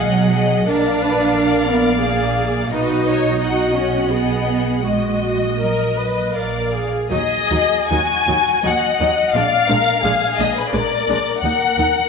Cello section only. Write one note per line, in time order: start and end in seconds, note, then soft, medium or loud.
0.00 0.67 F#3 medium
0.68 1.65 D4 medium
1.67 2.00 B3 medium
1.99 2.72 A#3 medium
2.72 3.74 D#4 medium
3.76 4.10 C#4 medium
4.10 4.83 B3 medium
4.83 5.58 G#3 medium
5.61 6.36 F#3 medium
7.12 7.20 D#3 medium
7.51 7.59 D#3 medium
7.91 7.99 D#3 medium
8.28 8.36 D#3 medium
8.65 8.73 D#3 medium
8.99 9.07 D#3 medium
9.34 9.42 A#2 medium
9.69 9.77 A#2 medium
10.04 10.12 A#2 medium
10.38 10.46 A#2 medium
10.72 10.80 A#2 medium
11.07 11.15 A#2 medium
11.42 11.50 D#2 medium
11.77 11.85 D#2 medium